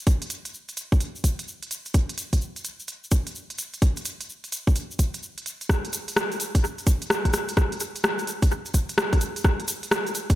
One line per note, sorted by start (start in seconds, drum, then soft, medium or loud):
0.07 kick loud
0.07 closed hi-hat medium
0.07 shaker soft
0.22 closed hi-hat medium
0.30 closed hi-hat medium
0.30 shaker medium
0.45 closed hi-hat medium
0.45 shaker soft
0.54 shaker soft
0.69 closed hi-hat soft
0.69 shaker soft
0.77 closed hi-hat medium
0.77 shaker medium
0.92 kick medium
0.92 shaker soft
1.00 closed hi-hat medium
1.00 shaker medium
1.15 shaker soft
1.24 kick medium
1.24 closed hi-hat loud
1.24 shaker medium
1.39 closed hi-hat medium
1.39 shaker soft
1.48 shaker soft
1.63 closed hi-hat soft
1.71 closed hi-hat medium
1.71 shaker medium
1.85 closed hi-hat soft
1.85 shaker soft
1.94 kick loud
1.94 closed hi-hat medium
1.94 shaker soft
2.09 closed hi-hat medium
2.18 closed hi-hat medium
2.18 shaker medium
2.33 kick medium
2.33 closed hi-hat medium
2.33 shaker soft
2.41 shaker soft
2.56 closed hi-hat soft
2.56 shaker soft
2.65 closed hi-hat medium
2.65 shaker medium
2.80 shaker soft
2.88 closed hi-hat medium
2.88 shaker soft
3.04 shaker soft
3.11 kick medium
3.11 closed hi-hat loud
3.11 shaker medium
3.27 closed hi-hat medium
3.27 shaker soft
3.35 shaker soft
3.50 closed hi-hat medium
3.58 closed hi-hat medium
3.58 shaker medium
3.73 closed hi-hat soft
3.73 shaker soft
3.82 kick loud
3.82 closed hi-hat medium
3.82 shaker soft
3.96 closed hi-hat medium
3.96 shaker soft
4.05 closed hi-hat loud
4.05 shaker medium
4.21 closed hi-hat medium
4.21 shaker soft
4.29 shaker soft
4.44 closed hi-hat soft
4.44 shaker soft
4.52 closed hi-hat medium
4.52 shaker medium
4.67 kick medium
4.67 shaker soft
4.75 closed hi-hat medium
4.75 shaker soft
4.91 shaker soft
4.99 kick medium
4.99 closed hi-hat loud
4.99 shaker medium
5.14 closed hi-hat medium
5.14 shaker soft
5.23 shaker soft
5.38 closed hi-hat soft
5.46 closed hi-hat medium
5.46 shaker medium
5.61 closed hi-hat soft
5.61 shaker soft
5.69 kick loud
5.69 cross-stick medium
5.69 shaker medium
5.85 closed hi-hat medium
5.93 closed hi-hat loud
5.93 shaker loud
6.08 closed hi-hat medium
6.08 shaker soft
6.16 cross-stick loud
6.16 shaker medium
6.32 closed hi-hat soft
6.32 shaker soft
6.40 closed hi-hat loud
6.40 shaker medium
6.55 kick loud
6.55 closed hi-hat medium
6.55 shaker soft
6.64 shaker medium
6.78 closed hi-hat soft
6.78 shaker soft
6.87 kick loud
6.87 closed hi-hat loud
6.87 shaker loud
7.02 closed hi-hat medium
7.02 shaker soft
7.10 cross-stick loud
7.10 shaker soft
7.25 kick medium
7.25 cross-stick soft
7.25 closed hi-hat medium
7.33 cross-stick medium
7.33 closed hi-hat medium
7.33 shaker loud
7.48 closed hi-hat medium
7.48 shaker soft
7.57 kick loud
7.57 cross-stick medium
7.57 shaker soft
7.72 closed hi-hat medium
7.80 closed hi-hat loud
7.80 shaker medium
7.95 closed hi-hat medium
7.95 shaker soft
8.04 cross-stick loud
8.04 shaker medium
8.19 closed hi-hat soft
8.19 shaker soft
8.27 closed hi-hat medium
8.27 shaker medium
8.42 kick loud
8.42 closed hi-hat medium
8.42 shaker soft
8.51 shaker medium
8.65 closed hi-hat soft
8.65 shaker soft
8.74 kick medium
8.74 closed hi-hat loud
8.74 shaker loud
8.89 closed hi-hat medium
8.89 shaker soft
8.98 cross-stick loud
8.98 shaker medium
9.13 kick loud
9.13 cross-stick soft
9.13 closed hi-hat medium
9.21 closed hi-hat medium
9.21 shaker medium
9.36 closed hi-hat medium
9.36 shaker soft
9.44 kick loud
9.44 cross-stick medium
9.44 shaker medium
9.60 closed hi-hat medium
9.68 closed hi-hat loud
9.68 shaker loud
9.83 closed hi-hat medium
9.83 shaker soft
9.91 cross-stick loud
9.91 shaker medium
10.07 closed hi-hat soft
10.07 shaker soft
10.15 closed hi-hat medium
10.15 shaker medium
10.30 kick loud
10.30 closed hi-hat medium
10.30 shaker soft